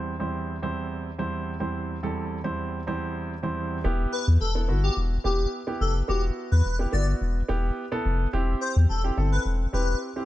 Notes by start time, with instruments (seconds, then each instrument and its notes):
Already playing: grand piano E2 G3 C4 E4 C5
0.20 grand piano E2 G3 C4 E4 C5
0.62 grand piano E2 G3 C4 E4 C5
1.18 grand piano E2 G3 C4 E4 C5
1.60 grand piano E2 G3 C4 E4 C5
2.03 grand piano E2 G3 C4 E4 A4
2.44 grand piano E2 G3 C4 E4 C5
2.87 grand piano E2 G3 C4 E4 C5
3.43 grand piano E2 G3 C4 E4 C5
3.84 sub bass E1, grand piano B3 E4 G4
4.12 digital synth lead B4
4.27 sub bass E2
4.40 sub bass E1, digital synth lead A4
4.55 grand piano B3 E4 A4
4.68 sub bass G1, grand piano B3 E4 F#4
4.83 digital synth lead G4
4.96 sub bass E1
5.24 sub bass E1, grand piano B3 E4 G4, digital synth lead G4
5.67 grand piano B3 E4 G4
5.80 sub bass F1, digital synth lead A4
6.08 sub bass E1, grand piano B3 E4 F#4, digital synth lead G4
6.51 sub bass E2, digital synth lead B4
6.65 sub bass E1
6.79 grand piano B3 E4 G4
6.92 sub bass G1, grand piano B3 E4 F#4, digital synth lead D5
7.21 sub bass E1
7.48 sub bass E1, grand piano B3 E4 G4
7.92 grand piano B3 E4 A4
8.05 sub bass F1
8.33 sub bass E1, grand piano C4 E4 G4
8.61 digital synth lead C5
8.76 sub bass E2
8.89 sub bass E1, digital synth lead A4
9.04 grand piano C4 E4 G4
9.17 sub bass G1, grand piano C4 E4 A4
9.32 digital synth lead B4
9.45 sub bass E1
9.73 sub bass E1, grand piano C4 E4 G4, digital synth lead B4
10.16 grand piano C4 E4 G4